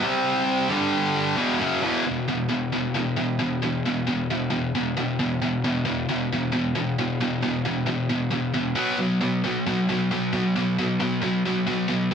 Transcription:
0.02 0.69 C3 medium
0.02 0.68 G3 loud
0.02 0.69 C4 loud
0.69 1.36 G2 medium
0.69 1.36 D3 loud
0.69 1.36 G3 loud
1.37 1.58 E2 medium
1.37 1.59 B2 loud
1.37 1.59 E3 loud
1.59 1.81 F#2 medium
1.59 1.82 C#3 loud
1.59 1.82 F#3 medium
1.81 2.03 E2 medium
1.81 2.03 B2 medium
1.81 2.04 E3 medium
2.06 2.25 E2 medium
2.06 2.25 B2 medium
2.28 2.48 E2 medium
2.28 2.48 B2 medium
2.49 2.70 E2 medium
2.49 2.69 B2 medium
2.72 2.92 E2 medium
2.72 2.92 B2 medium
2.94 3.14 E2 medium
2.94 3.15 B2 medium
3.16 3.36 E2 medium
3.16 3.37 B2 medium
3.39 3.59 E2 medium
3.39 3.59 B2 medium
3.62 3.82 E2 medium
3.62 3.82 B2 medium
3.85 4.05 E2 medium
3.85 4.05 B2 medium
4.07 4.26 E2 medium
4.07 4.26 B2 medium
4.30 4.49 E2 medium
4.30 4.49 B2 medium
4.50 4.71 E2 medium
4.50 4.71 B2 medium
4.75 4.94 E2 medium
4.75 4.94 B2 medium
4.97 5.16 E2 medium
4.97 5.16 B2 medium
5.19 5.39 E2 medium
5.19 5.39 B2 medium
5.42 5.61 E2 medium
5.42 5.61 B2 medium
5.64 5.84 E2 medium
5.64 5.84 B2 medium
5.85 6.05 E2 medium
5.85 6.05 B2 medium
6.09 6.28 E2 medium
6.09 6.28 B2 medium
6.32 6.51 E2 medium
6.32 6.51 B2 medium
6.52 6.72 E2 medium
6.52 6.73 B2 medium
6.75 6.95 E2 medium
6.75 6.95 B2 medium
6.99 7.18 E2 medium
6.99 7.18 B2 medium
7.21 7.40 E2 medium
7.21 7.41 B2 medium
7.43 7.63 E2 medium
7.43 7.63 B2 medium
7.65 7.85 E2 medium
7.65 7.85 B2 medium
7.86 8.07 E2 medium
7.86 8.07 B2 medium
8.10 8.30 E2 medium
8.10 8.30 B2 medium
8.31 8.51 E2 medium
8.31 8.51 B2 medium
8.54 8.74 E2 medium
8.54 8.74 B2 medium
8.75 8.96 B2 medium
8.75 8.97 F#3 medium
8.75 8.98 B3 medium
8.98 9.18 B2 medium
8.98 9.19 F#3 medium
9.21 9.41 B2 medium
9.21 9.41 F#3 medium
9.44 9.64 B2 medium
9.44 9.64 F#3 medium
9.66 9.86 B2 medium
9.66 9.87 F#3 medium
9.89 10.09 B2 medium
9.89 10.09 F#3 medium
10.11 10.31 B2 medium
10.11 10.31 F#3 medium
10.33 10.53 B2 medium
10.33 10.54 F#3 medium
10.56 10.76 B2 medium
10.56 10.76 F#3 medium
10.79 10.98 B2 medium
10.79 10.98 F#3 medium
11.00 11.20 B2 medium
11.00 11.20 F#3 medium
11.22 11.42 B2 medium
11.22 11.43 F#3 medium
11.45 11.65 B2 medium
11.45 11.65 F#3 medium
11.67 11.87 B2 medium
11.67 11.87 F#3 medium
11.88 12.09 B2 medium
11.88 12.09 F#3 medium

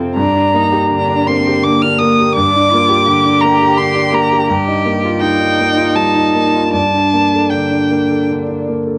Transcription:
0.00 0.14 F2 medium
0.00 0.20 C3 soft
0.00 0.17 C4 soft
0.00 0.20 C4 soft
0.00 0.20 F4 soft
0.00 0.20 A4 medium
0.16 2.30 G2 medium
0.16 0.57 D4 medium
0.16 1.29 A#5 medium
0.36 0.66 D4 soft
0.55 0.84 A#3 soft
0.55 0.93 D#4 medium
0.72 1.02 G4 soft
0.91 1.20 D3 soft
0.91 1.29 D4 medium
1.09 1.38 D4 soft
1.27 1.57 A#3 soft
1.27 1.66 C4 medium
1.27 1.65 C6 medium
1.47 1.75 G4 medium
1.64 1.93 D3 soft
1.64 2.35 A#3 medium
1.64 1.84 D6 medium
1.82 2.11 D4 medium
1.82 2.00 F6 medium
1.99 2.28 A#3 medium
1.99 2.34 D#6 medium
2.20 2.47 G4 soft
2.35 4.46 G2 medium
2.35 2.72 D4 medium
2.35 3.42 D6 loud
2.56 2.83 D4 soft
2.71 3.00 A#3 medium
2.71 3.08 F4 medium
2.89 3.17 G4 medium
3.06 3.35 D3 medium
3.06 4.48 G4 medium
3.25 3.53 D4 medium
3.41 3.71 A#3 medium
3.41 3.79 A#5 medium
3.61 3.89 G4 medium
3.78 4.06 D3 soft
3.78 4.16 C6 medium
3.95 4.24 D4 medium
4.12 4.41 A#3 medium
4.12 4.49 A#5 medium
4.31 4.49 G4 soft
4.49 6.69 G2 medium
4.49 5.22 G4 medium
4.68 4.96 D#4 soft
4.86 5.14 A#3 soft
5.05 5.33 F4 medium
5.21 5.51 G3 soft
5.21 6.72 D#4 medium
5.21 5.97 G5 medium
5.40 5.70 D#4 soft
5.60 5.89 A#3 soft
5.77 6.07 F4 soft
5.95 6.26 G3 soft
5.95 6.72 A5 medium
6.15 6.46 D#4 soft
6.35 6.66 A#3 soft
6.54 6.73 F4 soft
6.73 8.98 G2 soft
6.73 8.64 D4 soft
6.73 7.52 A5 medium
6.94 7.24 D4 soft
7.14 7.44 A#3 soft
7.34 7.64 A4 soft
7.50 7.83 D3 soft
7.50 8.29 G5 medium
7.71 8.02 D4 soft
7.91 8.22 A#3 soft
8.11 8.41 A4 soft
8.31 8.61 D3 soft
8.49 8.80 D4 soft
8.68 8.98 A#3 soft
8.87 8.98 A4 soft

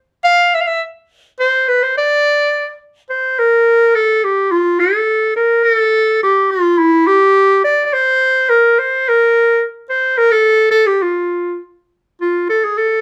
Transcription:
0.24 0.56 F5 loud
0.55 0.62 E5 medium
0.61 0.69 F5 medium
0.67 0.82 E5 medium
1.40 1.70 C5 medium
1.68 1.85 B4 medium
1.83 1.97 C5 medium
1.98 2.78 D5 medium
3.10 3.41 C5 medium
3.39 3.97 A#4 loud
3.95 4.26 A4 medium
4.24 4.53 G4 medium
4.51 4.81 F4 medium
4.80 5.35 A4 medium
5.36 5.64 A#4 medium
5.64 5.75 A#4 loud
5.75 6.21 A4 loud
6.23 6.52 G4 medium
6.51 6.80 F4 medium
6.79 7.09 E4 medium
7.07 7.64 G4 loud
7.64 7.85 D5 medium
7.85 7.95 D5 medium
7.93 8.51 C5 loud
8.50 8.81 A#4 medium
8.79 9.10 C5 medium
9.09 9.64 A#4 medium
9.90 10.20 C5 medium
10.18 10.33 A#4 loud
10.32 10.70 A4 loud
10.71 10.88 A4 loud
10.87 11.04 G4 medium
11.02 11.61 F4 medium
12.21 12.47 F4 medium
12.50 12.66 A4 medium
12.65 12.80 G#4 medium
12.78 13.01 A4 medium

